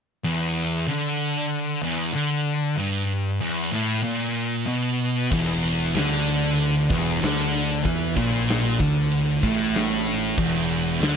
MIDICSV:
0, 0, Header, 1, 4, 480
1, 0, Start_track
1, 0, Tempo, 633580
1, 181, Time_signature, 4, 2, 24, 8
1, 8459, End_track
2, 0, Start_track
2, 0, Title_t, "Distorted electric guitar"
2, 0, Program_c, 0, 30
2, 183, Note_on_c, 0, 40, 101
2, 657, Note_off_c, 0, 40, 0
2, 662, Note_on_c, 0, 50, 92
2, 1377, Note_off_c, 0, 50, 0
2, 1377, Note_on_c, 0, 40, 92
2, 1610, Note_on_c, 0, 50, 101
2, 1614, Note_off_c, 0, 40, 0
2, 2092, Note_off_c, 0, 50, 0
2, 2093, Note_on_c, 0, 43, 107
2, 2573, Note_off_c, 0, 43, 0
2, 2578, Note_on_c, 0, 40, 98
2, 2813, Note_on_c, 0, 45, 104
2, 2816, Note_off_c, 0, 40, 0
2, 3049, Note_off_c, 0, 45, 0
2, 3052, Note_on_c, 0, 46, 96
2, 3533, Note_off_c, 0, 46, 0
2, 3538, Note_on_c, 0, 47, 99
2, 4016, Note_off_c, 0, 47, 0
2, 4023, Note_on_c, 0, 40, 121
2, 4498, Note_off_c, 0, 40, 0
2, 4502, Note_on_c, 0, 50, 104
2, 5216, Note_off_c, 0, 50, 0
2, 5219, Note_on_c, 0, 40, 88
2, 5455, Note_off_c, 0, 40, 0
2, 5463, Note_on_c, 0, 50, 104
2, 5936, Note_off_c, 0, 50, 0
2, 5941, Note_on_c, 0, 52, 117
2, 6175, Note_off_c, 0, 52, 0
2, 6188, Note_on_c, 0, 46, 85
2, 6658, Note_off_c, 0, 46, 0
2, 6671, Note_on_c, 0, 50, 108
2, 7139, Note_off_c, 0, 50, 0
2, 7147, Note_on_c, 0, 45, 107
2, 7856, Note_off_c, 0, 45, 0
2, 7867, Note_on_c, 0, 40, 107
2, 8336, Note_off_c, 0, 40, 0
2, 8340, Note_on_c, 0, 50, 102
2, 8459, Note_off_c, 0, 50, 0
2, 8459, End_track
3, 0, Start_track
3, 0, Title_t, "Picked electric bass"
3, 0, Program_c, 1, 34
3, 4025, Note_on_c, 1, 28, 92
3, 4476, Note_off_c, 1, 28, 0
3, 4501, Note_on_c, 1, 38, 104
3, 5193, Note_off_c, 1, 38, 0
3, 5227, Note_on_c, 1, 28, 82
3, 5450, Note_off_c, 1, 28, 0
3, 5475, Note_on_c, 1, 38, 101
3, 5919, Note_off_c, 1, 38, 0
3, 5946, Note_on_c, 1, 40, 102
3, 6168, Note_off_c, 1, 40, 0
3, 6187, Note_on_c, 1, 34, 111
3, 6634, Note_off_c, 1, 34, 0
3, 6666, Note_on_c, 1, 38, 78
3, 7113, Note_off_c, 1, 38, 0
3, 7143, Note_on_c, 1, 33, 96
3, 7831, Note_off_c, 1, 33, 0
3, 7860, Note_on_c, 1, 28, 94
3, 8309, Note_off_c, 1, 28, 0
3, 8336, Note_on_c, 1, 38, 103
3, 8459, Note_off_c, 1, 38, 0
3, 8459, End_track
4, 0, Start_track
4, 0, Title_t, "Drums"
4, 4029, Note_on_c, 9, 36, 116
4, 4029, Note_on_c, 9, 49, 122
4, 4104, Note_off_c, 9, 36, 0
4, 4105, Note_off_c, 9, 49, 0
4, 4270, Note_on_c, 9, 51, 74
4, 4346, Note_off_c, 9, 51, 0
4, 4507, Note_on_c, 9, 51, 123
4, 4520, Note_on_c, 9, 38, 120
4, 4582, Note_off_c, 9, 51, 0
4, 4596, Note_off_c, 9, 38, 0
4, 4747, Note_on_c, 9, 51, 91
4, 4822, Note_off_c, 9, 51, 0
4, 4985, Note_on_c, 9, 51, 108
4, 5061, Note_off_c, 9, 51, 0
4, 5230, Note_on_c, 9, 36, 114
4, 5231, Note_on_c, 9, 51, 82
4, 5306, Note_off_c, 9, 36, 0
4, 5306, Note_off_c, 9, 51, 0
4, 5470, Note_on_c, 9, 51, 98
4, 5484, Note_on_c, 9, 38, 116
4, 5546, Note_off_c, 9, 51, 0
4, 5560, Note_off_c, 9, 38, 0
4, 5707, Note_on_c, 9, 51, 72
4, 5783, Note_off_c, 9, 51, 0
4, 5943, Note_on_c, 9, 51, 99
4, 5948, Note_on_c, 9, 36, 105
4, 6018, Note_off_c, 9, 51, 0
4, 6024, Note_off_c, 9, 36, 0
4, 6186, Note_on_c, 9, 51, 83
4, 6187, Note_on_c, 9, 36, 101
4, 6262, Note_off_c, 9, 51, 0
4, 6263, Note_off_c, 9, 36, 0
4, 6429, Note_on_c, 9, 51, 103
4, 6442, Note_on_c, 9, 38, 122
4, 6504, Note_off_c, 9, 51, 0
4, 6518, Note_off_c, 9, 38, 0
4, 6667, Note_on_c, 9, 36, 108
4, 6667, Note_on_c, 9, 51, 73
4, 6743, Note_off_c, 9, 36, 0
4, 6743, Note_off_c, 9, 51, 0
4, 6907, Note_on_c, 9, 51, 98
4, 6982, Note_off_c, 9, 51, 0
4, 7144, Note_on_c, 9, 51, 75
4, 7145, Note_on_c, 9, 36, 114
4, 7219, Note_off_c, 9, 51, 0
4, 7221, Note_off_c, 9, 36, 0
4, 7382, Note_on_c, 9, 51, 88
4, 7396, Note_on_c, 9, 38, 114
4, 7458, Note_off_c, 9, 51, 0
4, 7471, Note_off_c, 9, 38, 0
4, 7627, Note_on_c, 9, 51, 68
4, 7703, Note_off_c, 9, 51, 0
4, 7863, Note_on_c, 9, 36, 107
4, 7864, Note_on_c, 9, 57, 106
4, 7939, Note_off_c, 9, 36, 0
4, 7940, Note_off_c, 9, 57, 0
4, 8104, Note_on_c, 9, 51, 75
4, 8180, Note_off_c, 9, 51, 0
4, 8342, Note_on_c, 9, 51, 110
4, 8356, Note_on_c, 9, 38, 121
4, 8418, Note_off_c, 9, 51, 0
4, 8431, Note_off_c, 9, 38, 0
4, 8459, End_track
0, 0, End_of_file